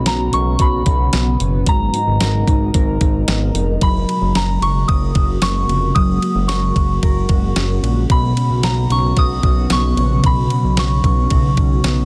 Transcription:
0.00 1.67 B2 medium
0.00 1.65 C#3 medium
0.00 1.65 F#3 medium
0.00 1.65 B3 medium
0.00 0.32 C#4 medium
0.00 1.63 F#4 medium
0.05 0.30 B1 medium
0.05 0.58 F#4 medium
0.05 0.34 A#5 loud
0.05 snare loud
0.05 closed hi-hat medium
0.05 tambourine medium
0.32 0.57 B1 loud
0.32 0.85 C#4 medium
0.32 0.61 C#6 loud
0.32 closed hi-hat medium
0.59 0.83 B1 medium
0.59 1.72 F#4 medium
0.59 1.37 B5 medium
0.59 kick medium
0.59 closed hi-hat medium
0.86 1.10 B1 loud
0.86 1.38 C#4 medium
0.86 kick medium
0.86 closed hi-hat medium
1.13 1.37 B1 loud
1.13 2.24 B3 medium
1.13 snare loud
1.13 closed hi-hat medium
1.13 tambourine medium
1.40 1.64 F#1 loud
1.40 1.72 C#4 medium
1.40 closed hi-hat soft
1.67 1.90 G#1 loud
1.67 3.81 G#2 medium
1.67 3.80 B2 medium
1.67 3.79 G#3 medium
1.67 3.80 D#4 medium
1.67 3.80 A#4 medium
1.67 3.25 A#5 loud
1.67 kick loud
1.67 closed hi-hat medium
1.94 2.47 D#4 medium
1.94 closed hi-hat medium
2.07 2.19 G#1 loud
2.21 2.44 G#1 loud
2.21 2.75 A#4 medium
2.21 snare loud
2.21 closed hi-hat medium
2.21 tambourine medium
2.47 2.71 G#1 medium
2.47 3.01 D#4 medium
2.47 kick medium
2.47 closed hi-hat medium
2.74 2.98 G#1 loud
2.74 4.35 A#4 medium
2.74 kick medium
2.74 closed hi-hat medium
3.01 3.25 G#1 medium
3.01 3.54 D#4 medium
3.01 kick medium
3.01 closed hi-hat medium
3.28 3.51 G#1 loud
3.28 3.87 B3 medium
3.28 snare loud
3.28 closed hi-hat medium
3.28 tambourine medium
3.54 3.78 F1 loud
3.54 3.87 D#4 medium
3.54 closed hi-hat soft
3.81 4.05 F#1 loud
3.81 12.05 C#3 medium
3.81 5.96 F#3 medium
3.81 8.06 G#3 medium
3.81 8.06 A#3 medium
3.81 12.05 F#4 medium
3.81 4.37 B5 medium
3.81 kick loud
3.81 ride medium
4.09 4.61 F#4 medium
4.09 ride soft
4.21 4.33 F#1 medium
4.35 4.59 F#1 medium
4.35 4.88 A#4 medium
4.35 4.63 A#5 medium
4.35 snare loud
4.35 ride medium
4.35 tambourine medium
4.62 4.85 F#1 medium
4.62 5.16 F#4 medium
4.62 4.90 C#6 medium
4.62 ride soft
4.88 5.12 F#1 loud
4.88 6.48 A#4 medium
4.88 5.43 D#6 loud
4.88 kick medium
4.88 ride medium
5.15 5.39 F#1 loud
5.15 5.69 F#4 medium
5.15 kick loud
5.15 ride soft
5.42 5.65 F#1 loud
5.42 7.56 C#4 medium
5.42 5.97 C#6 loud
5.42 snare loud
5.42 ride medium
5.42 tambourine medium
5.69 5.92 F1 medium
5.69 6.23 F#4 medium
5.69 ride soft
5.95 6.19 F#1 loud
5.95 8.10 F#3 medium
5.95 6.50 D#6 loud
5.95 kick loud
5.95 ride medium
6.22 6.76 F#4 medium
6.22 ride soft
6.35 6.47 F#1 loud
6.48 6.72 F#1 loud
6.48 7.02 A#4 medium
6.48 7.79 C#6 medium
6.48 snare loud
6.48 ride medium
6.48 tambourine medium
6.76 6.99 F#1 medium
6.76 7.29 F#4 medium
6.76 kick medium
6.76 ride soft
7.03 7.26 F#1 loud
7.03 8.15 A#4 medium
7.03 kick medium
7.03 ride medium
7.29 7.53 F#1 medium
7.29 7.83 F#4 medium
7.29 kick medium
7.29 ride soft
7.56 7.80 F#1 loud
7.56 8.37 C#4 medium
7.56 snare loud
7.56 ride medium
7.56 tambourine medium
7.83 8.06 A#1 medium
7.83 8.37 F#4 medium
7.83 ride soft
8.10 8.33 B1 loud
8.10 10.24 B2 medium
8.10 12.05 F#3 medium
8.10 10.22 B3 medium
8.10 8.66 B5 loud
8.10 kick loud
8.10 ride medium
8.37 8.90 C#4 medium
8.37 ride soft
8.50 8.62 B1 medium
8.63 8.87 B1 medium
8.63 9.16 F#4 medium
8.63 8.91 A#5 medium
8.63 snare loud
8.63 ride medium
8.63 tambourine medium
8.90 9.14 B1 loud
8.90 9.43 C#4 medium
8.90 9.16 C#6 medium
8.90 ride soft
9.17 9.41 B1 loud
9.17 10.77 F#4 medium
9.17 9.73 D#6 loud
9.17 kick medium
9.17 ride medium
9.43 9.67 B1 medium
9.43 9.98 C#4 medium
9.43 kick medium
9.43 ride soft
9.70 9.94 B1 loud
9.70 11.82 B3 medium
9.70 10.27 C#6 loud
9.70 snare loud
9.70 ride medium
9.70 tambourine medium
9.97 10.21 A#1 medium
9.97 10.50 C#4 medium
9.97 ride soft
10.24 10.47 B1 loud
10.24 12.05 B2 medium
10.24 12.05 B3 medium
10.24 10.80 B5 medium
10.24 kick loud
10.24 ride medium
10.50 11.04 C#4 medium
10.50 ride soft
10.64 10.76 B1 medium
10.77 11.01 B1 loud
10.77 11.30 F#4 medium
10.77 12.05 C#6 medium
10.77 snare loud
10.77 ride medium
10.77 tambourine medium
11.04 11.28 B1 loud
11.04 11.57 C#4 medium
11.04 kick medium
11.04 ride soft
11.30 11.55 B1 loud
11.30 12.05 F#4 medium
11.30 kick loud
11.30 ride medium
11.57 11.81 B1 medium
11.57 12.05 C#4 medium
11.57 kick loud
11.57 ride soft
11.84 12.05 B1 loud
11.84 12.05 B3 medium
11.84 snare loud
11.84 ride medium
11.84 tambourine medium

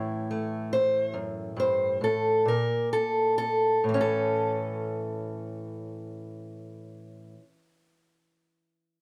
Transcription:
0.00 2.00 A2 medium
0.00 2.46 E3 medium
0.00 0.30 A3 medium
0.00 2.47 C#4 soft
0.00 0.72 E4 soft
0.31 2.47 A3 soft
0.73 1.15 C5 medium
1.14 1.56 F#2 medium
1.56 2.01 G2 medium
1.56 2.02 C5 medium
2.01 2.46 A2 medium
2.01 2.47 A4 medium
2.45 3.78 A#2 medium
2.45 2.92 A#4 medium
2.93 3.37 A4 medium
3.38 3.84 A4 loud
3.84 7.34 A2 medium
3.89 7.39 E3 medium
3.94 7.44 C#4 medium
4.01 7.12 A4 medium

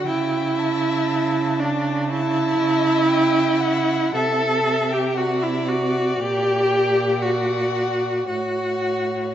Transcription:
0.06 4.08 C#3 medium
0.06 1.61 E4 loud
0.06 1.61 E5 loud
0.06 0.60 G5 medium
0.58 2.08 A5 medium
1.59 2.11 D4 loud
1.59 2.08 D5 medium
2.09 4.14 E4 loud
2.09 4.09 E5 loud
2.09 3.06 A5 medium
3.08 3.61 G5 medium
3.60 4.17 F#5 loud
4.13 6.20 C3 medium
4.13 4.95 A4 loud
4.13 5.19 E5 medium
4.13 4.93 A5 loud
4.91 5.19 G4 loud
4.91 5.17 G5 loud
5.16 5.44 F#4 loud
5.16 7.22 D5 medium
5.16 5.42 F#5 loud
5.41 5.70 E4 loud
5.41 5.67 E5 medium
5.66 6.21 F#4 loud
5.66 6.19 F#5 medium
6.17 8.28 A#2 medium
6.17 7.24 G4 loud
6.17 7.21 G5 loud
7.20 8.27 F#4 loud
7.20 8.27 D5 medium
7.20 8.27 F#5 loud
8.27 9.35 A2 medium
8.27 9.35 F#4 loud
8.27 9.35 C#5 medium
8.27 9.35 F#5 medium

